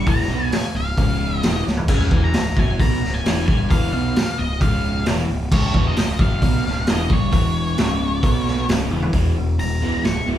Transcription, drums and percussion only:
0, 0, Header, 1, 2, 480
1, 0, Start_track
1, 0, Tempo, 453172
1, 72, Time_signature, 4, 2, 24, 8
1, 10996, End_track
2, 0, Start_track
2, 0, Title_t, "Drums"
2, 71, Note_on_c, 9, 36, 101
2, 77, Note_on_c, 9, 46, 61
2, 177, Note_off_c, 9, 36, 0
2, 183, Note_off_c, 9, 46, 0
2, 206, Note_on_c, 9, 38, 32
2, 312, Note_off_c, 9, 38, 0
2, 551, Note_on_c, 9, 46, 64
2, 557, Note_on_c, 9, 38, 113
2, 657, Note_off_c, 9, 46, 0
2, 663, Note_off_c, 9, 38, 0
2, 1033, Note_on_c, 9, 36, 93
2, 1035, Note_on_c, 9, 46, 58
2, 1139, Note_off_c, 9, 36, 0
2, 1141, Note_off_c, 9, 46, 0
2, 1514, Note_on_c, 9, 46, 57
2, 1521, Note_on_c, 9, 38, 114
2, 1620, Note_off_c, 9, 46, 0
2, 1627, Note_off_c, 9, 38, 0
2, 1763, Note_on_c, 9, 38, 58
2, 1869, Note_off_c, 9, 38, 0
2, 1874, Note_on_c, 9, 43, 79
2, 1980, Note_off_c, 9, 43, 0
2, 1991, Note_on_c, 9, 49, 91
2, 1995, Note_on_c, 9, 36, 105
2, 2097, Note_off_c, 9, 49, 0
2, 2101, Note_off_c, 9, 36, 0
2, 2122, Note_on_c, 9, 38, 32
2, 2228, Note_off_c, 9, 38, 0
2, 2237, Note_on_c, 9, 36, 104
2, 2342, Note_off_c, 9, 36, 0
2, 2473, Note_on_c, 9, 46, 54
2, 2479, Note_on_c, 9, 38, 110
2, 2579, Note_off_c, 9, 46, 0
2, 2585, Note_off_c, 9, 38, 0
2, 2718, Note_on_c, 9, 36, 91
2, 2824, Note_off_c, 9, 36, 0
2, 2961, Note_on_c, 9, 36, 92
2, 2966, Note_on_c, 9, 46, 51
2, 3067, Note_off_c, 9, 36, 0
2, 3071, Note_off_c, 9, 46, 0
2, 3216, Note_on_c, 9, 38, 28
2, 3322, Note_off_c, 9, 38, 0
2, 3446, Note_on_c, 9, 46, 55
2, 3453, Note_on_c, 9, 38, 106
2, 3552, Note_off_c, 9, 46, 0
2, 3559, Note_off_c, 9, 38, 0
2, 3685, Note_on_c, 9, 36, 96
2, 3790, Note_off_c, 9, 36, 0
2, 3924, Note_on_c, 9, 36, 98
2, 3928, Note_on_c, 9, 46, 53
2, 4030, Note_off_c, 9, 36, 0
2, 4034, Note_off_c, 9, 46, 0
2, 4406, Note_on_c, 9, 46, 58
2, 4412, Note_on_c, 9, 38, 113
2, 4512, Note_off_c, 9, 46, 0
2, 4518, Note_off_c, 9, 38, 0
2, 4883, Note_on_c, 9, 36, 104
2, 4885, Note_on_c, 9, 46, 54
2, 4989, Note_off_c, 9, 36, 0
2, 4991, Note_off_c, 9, 46, 0
2, 5357, Note_on_c, 9, 46, 60
2, 5364, Note_on_c, 9, 38, 119
2, 5463, Note_off_c, 9, 46, 0
2, 5470, Note_off_c, 9, 38, 0
2, 5843, Note_on_c, 9, 36, 100
2, 5843, Note_on_c, 9, 57, 94
2, 5949, Note_off_c, 9, 36, 0
2, 5949, Note_off_c, 9, 57, 0
2, 6081, Note_on_c, 9, 36, 102
2, 6187, Note_off_c, 9, 36, 0
2, 6317, Note_on_c, 9, 46, 60
2, 6323, Note_on_c, 9, 38, 106
2, 6423, Note_off_c, 9, 46, 0
2, 6429, Note_off_c, 9, 38, 0
2, 6558, Note_on_c, 9, 36, 100
2, 6664, Note_off_c, 9, 36, 0
2, 6800, Note_on_c, 9, 36, 94
2, 6802, Note_on_c, 9, 46, 54
2, 6906, Note_off_c, 9, 36, 0
2, 6907, Note_off_c, 9, 46, 0
2, 7047, Note_on_c, 9, 38, 30
2, 7153, Note_off_c, 9, 38, 0
2, 7272, Note_on_c, 9, 46, 60
2, 7279, Note_on_c, 9, 38, 112
2, 7378, Note_off_c, 9, 46, 0
2, 7385, Note_off_c, 9, 38, 0
2, 7520, Note_on_c, 9, 36, 100
2, 7626, Note_off_c, 9, 36, 0
2, 7760, Note_on_c, 9, 36, 103
2, 7760, Note_on_c, 9, 46, 58
2, 7866, Note_off_c, 9, 36, 0
2, 7866, Note_off_c, 9, 46, 0
2, 8236, Note_on_c, 9, 46, 54
2, 8243, Note_on_c, 9, 38, 115
2, 8342, Note_off_c, 9, 46, 0
2, 8349, Note_off_c, 9, 38, 0
2, 8718, Note_on_c, 9, 36, 99
2, 8720, Note_on_c, 9, 46, 52
2, 8824, Note_off_c, 9, 36, 0
2, 8826, Note_off_c, 9, 46, 0
2, 8963, Note_on_c, 9, 38, 31
2, 9069, Note_off_c, 9, 38, 0
2, 9202, Note_on_c, 9, 46, 60
2, 9208, Note_on_c, 9, 38, 117
2, 9308, Note_off_c, 9, 46, 0
2, 9314, Note_off_c, 9, 38, 0
2, 9439, Note_on_c, 9, 48, 59
2, 9544, Note_off_c, 9, 48, 0
2, 9557, Note_on_c, 9, 43, 82
2, 9663, Note_off_c, 9, 43, 0
2, 9672, Note_on_c, 9, 36, 106
2, 9672, Note_on_c, 9, 46, 53
2, 9778, Note_off_c, 9, 36, 0
2, 9778, Note_off_c, 9, 46, 0
2, 10158, Note_on_c, 9, 46, 50
2, 10264, Note_off_c, 9, 46, 0
2, 10638, Note_on_c, 9, 46, 45
2, 10644, Note_on_c, 9, 38, 95
2, 10744, Note_off_c, 9, 46, 0
2, 10750, Note_off_c, 9, 38, 0
2, 10996, End_track
0, 0, End_of_file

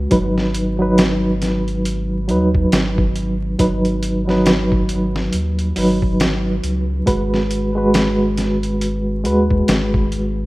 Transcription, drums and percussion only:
0, 0, Header, 1, 2, 480
1, 0, Start_track
1, 0, Key_signature, 5, "minor"
1, 0, Tempo, 869565
1, 63, Time_signature, 4, 2, 24, 8
1, 5774, End_track
2, 0, Start_track
2, 0, Title_t, "Drums"
2, 60, Note_on_c, 9, 42, 85
2, 62, Note_on_c, 9, 36, 104
2, 115, Note_off_c, 9, 42, 0
2, 117, Note_off_c, 9, 36, 0
2, 208, Note_on_c, 9, 38, 41
2, 263, Note_off_c, 9, 38, 0
2, 301, Note_on_c, 9, 42, 74
2, 356, Note_off_c, 9, 42, 0
2, 541, Note_on_c, 9, 42, 93
2, 545, Note_on_c, 9, 38, 114
2, 596, Note_off_c, 9, 42, 0
2, 600, Note_off_c, 9, 38, 0
2, 782, Note_on_c, 9, 42, 66
2, 786, Note_on_c, 9, 38, 38
2, 837, Note_off_c, 9, 42, 0
2, 842, Note_off_c, 9, 38, 0
2, 926, Note_on_c, 9, 42, 43
2, 981, Note_off_c, 9, 42, 0
2, 1023, Note_on_c, 9, 42, 90
2, 1078, Note_off_c, 9, 42, 0
2, 1262, Note_on_c, 9, 42, 70
2, 1318, Note_off_c, 9, 42, 0
2, 1405, Note_on_c, 9, 36, 94
2, 1460, Note_off_c, 9, 36, 0
2, 1503, Note_on_c, 9, 42, 85
2, 1507, Note_on_c, 9, 38, 116
2, 1558, Note_off_c, 9, 42, 0
2, 1563, Note_off_c, 9, 38, 0
2, 1646, Note_on_c, 9, 36, 98
2, 1701, Note_off_c, 9, 36, 0
2, 1742, Note_on_c, 9, 42, 72
2, 1797, Note_off_c, 9, 42, 0
2, 1983, Note_on_c, 9, 36, 102
2, 1983, Note_on_c, 9, 42, 91
2, 2038, Note_off_c, 9, 36, 0
2, 2038, Note_off_c, 9, 42, 0
2, 2124, Note_on_c, 9, 42, 45
2, 2180, Note_off_c, 9, 42, 0
2, 2222, Note_on_c, 9, 42, 75
2, 2277, Note_off_c, 9, 42, 0
2, 2368, Note_on_c, 9, 38, 40
2, 2423, Note_off_c, 9, 38, 0
2, 2461, Note_on_c, 9, 42, 86
2, 2465, Note_on_c, 9, 38, 118
2, 2516, Note_off_c, 9, 42, 0
2, 2520, Note_off_c, 9, 38, 0
2, 2605, Note_on_c, 9, 36, 91
2, 2660, Note_off_c, 9, 36, 0
2, 2699, Note_on_c, 9, 42, 67
2, 2754, Note_off_c, 9, 42, 0
2, 2847, Note_on_c, 9, 38, 55
2, 2902, Note_off_c, 9, 38, 0
2, 2940, Note_on_c, 9, 42, 93
2, 2995, Note_off_c, 9, 42, 0
2, 3084, Note_on_c, 9, 42, 45
2, 3139, Note_off_c, 9, 42, 0
2, 3180, Note_on_c, 9, 46, 78
2, 3235, Note_off_c, 9, 46, 0
2, 3325, Note_on_c, 9, 36, 92
2, 3380, Note_off_c, 9, 36, 0
2, 3422, Note_on_c, 9, 42, 87
2, 3427, Note_on_c, 9, 38, 120
2, 3478, Note_off_c, 9, 42, 0
2, 3482, Note_off_c, 9, 38, 0
2, 3663, Note_on_c, 9, 42, 70
2, 3718, Note_off_c, 9, 42, 0
2, 3903, Note_on_c, 9, 36, 110
2, 3903, Note_on_c, 9, 42, 86
2, 3958, Note_off_c, 9, 36, 0
2, 3958, Note_off_c, 9, 42, 0
2, 4050, Note_on_c, 9, 38, 41
2, 4105, Note_off_c, 9, 38, 0
2, 4143, Note_on_c, 9, 42, 73
2, 4199, Note_off_c, 9, 42, 0
2, 4383, Note_on_c, 9, 42, 87
2, 4388, Note_on_c, 9, 38, 117
2, 4439, Note_off_c, 9, 42, 0
2, 4443, Note_off_c, 9, 38, 0
2, 4623, Note_on_c, 9, 42, 68
2, 4627, Note_on_c, 9, 38, 37
2, 4678, Note_off_c, 9, 42, 0
2, 4683, Note_off_c, 9, 38, 0
2, 4765, Note_on_c, 9, 42, 45
2, 4820, Note_off_c, 9, 42, 0
2, 4865, Note_on_c, 9, 42, 86
2, 4920, Note_off_c, 9, 42, 0
2, 5106, Note_on_c, 9, 42, 67
2, 5161, Note_off_c, 9, 42, 0
2, 5247, Note_on_c, 9, 36, 93
2, 5302, Note_off_c, 9, 36, 0
2, 5344, Note_on_c, 9, 42, 84
2, 5348, Note_on_c, 9, 38, 115
2, 5399, Note_off_c, 9, 42, 0
2, 5403, Note_off_c, 9, 38, 0
2, 5487, Note_on_c, 9, 36, 105
2, 5543, Note_off_c, 9, 36, 0
2, 5586, Note_on_c, 9, 42, 68
2, 5641, Note_off_c, 9, 42, 0
2, 5774, End_track
0, 0, End_of_file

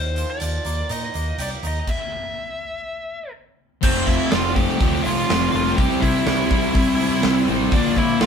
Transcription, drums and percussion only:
0, 0, Header, 1, 2, 480
1, 0, Start_track
1, 0, Key_signature, -1, "major"
1, 0, Tempo, 487805
1, 1846, Time_signature, 4, 2, 24, 8
1, 8129, End_track
2, 0, Start_track
2, 0, Title_t, "Drums"
2, 159, Note_on_c, 9, 42, 49
2, 257, Note_off_c, 9, 42, 0
2, 393, Note_on_c, 9, 42, 63
2, 492, Note_off_c, 9, 42, 0
2, 636, Note_on_c, 9, 42, 50
2, 734, Note_off_c, 9, 42, 0
2, 879, Note_on_c, 9, 42, 61
2, 978, Note_off_c, 9, 42, 0
2, 1121, Note_on_c, 9, 42, 49
2, 1219, Note_off_c, 9, 42, 0
2, 1362, Note_on_c, 9, 42, 70
2, 1461, Note_off_c, 9, 42, 0
2, 1604, Note_on_c, 9, 42, 45
2, 1703, Note_off_c, 9, 42, 0
2, 1844, Note_on_c, 9, 36, 83
2, 1844, Note_on_c, 9, 49, 72
2, 1942, Note_off_c, 9, 49, 0
2, 1943, Note_off_c, 9, 36, 0
2, 3765, Note_on_c, 9, 49, 120
2, 3770, Note_on_c, 9, 36, 110
2, 3864, Note_off_c, 9, 49, 0
2, 3868, Note_off_c, 9, 36, 0
2, 4007, Note_on_c, 9, 46, 60
2, 4010, Note_on_c, 9, 36, 91
2, 4105, Note_off_c, 9, 46, 0
2, 4108, Note_off_c, 9, 36, 0
2, 4246, Note_on_c, 9, 46, 78
2, 4249, Note_on_c, 9, 38, 115
2, 4344, Note_off_c, 9, 46, 0
2, 4347, Note_off_c, 9, 38, 0
2, 4488, Note_on_c, 9, 46, 66
2, 4489, Note_on_c, 9, 36, 90
2, 4586, Note_off_c, 9, 46, 0
2, 4587, Note_off_c, 9, 36, 0
2, 4724, Note_on_c, 9, 46, 71
2, 4729, Note_on_c, 9, 36, 108
2, 4823, Note_off_c, 9, 46, 0
2, 4827, Note_off_c, 9, 36, 0
2, 4966, Note_on_c, 9, 46, 62
2, 5064, Note_off_c, 9, 46, 0
2, 5214, Note_on_c, 9, 46, 90
2, 5217, Note_on_c, 9, 38, 115
2, 5313, Note_off_c, 9, 46, 0
2, 5316, Note_off_c, 9, 38, 0
2, 5452, Note_on_c, 9, 46, 58
2, 5550, Note_off_c, 9, 46, 0
2, 5689, Note_on_c, 9, 36, 112
2, 5689, Note_on_c, 9, 46, 83
2, 5787, Note_off_c, 9, 36, 0
2, 5787, Note_off_c, 9, 46, 0
2, 5928, Note_on_c, 9, 36, 86
2, 5932, Note_on_c, 9, 46, 68
2, 6026, Note_off_c, 9, 36, 0
2, 6030, Note_off_c, 9, 46, 0
2, 6164, Note_on_c, 9, 46, 88
2, 6167, Note_on_c, 9, 38, 104
2, 6262, Note_off_c, 9, 46, 0
2, 6265, Note_off_c, 9, 38, 0
2, 6404, Note_on_c, 9, 36, 97
2, 6404, Note_on_c, 9, 46, 71
2, 6502, Note_off_c, 9, 36, 0
2, 6502, Note_off_c, 9, 46, 0
2, 6636, Note_on_c, 9, 46, 87
2, 6643, Note_on_c, 9, 36, 113
2, 6735, Note_off_c, 9, 46, 0
2, 6741, Note_off_c, 9, 36, 0
2, 6885, Note_on_c, 9, 46, 64
2, 6983, Note_off_c, 9, 46, 0
2, 7114, Note_on_c, 9, 46, 87
2, 7117, Note_on_c, 9, 38, 110
2, 7213, Note_off_c, 9, 46, 0
2, 7216, Note_off_c, 9, 38, 0
2, 7351, Note_on_c, 9, 46, 53
2, 7450, Note_off_c, 9, 46, 0
2, 7589, Note_on_c, 9, 46, 79
2, 7597, Note_on_c, 9, 36, 110
2, 7688, Note_off_c, 9, 46, 0
2, 7695, Note_off_c, 9, 36, 0
2, 7833, Note_on_c, 9, 46, 56
2, 7837, Note_on_c, 9, 36, 86
2, 7932, Note_off_c, 9, 46, 0
2, 7936, Note_off_c, 9, 36, 0
2, 8076, Note_on_c, 9, 46, 77
2, 8079, Note_on_c, 9, 38, 121
2, 8129, Note_off_c, 9, 38, 0
2, 8129, Note_off_c, 9, 46, 0
2, 8129, End_track
0, 0, End_of_file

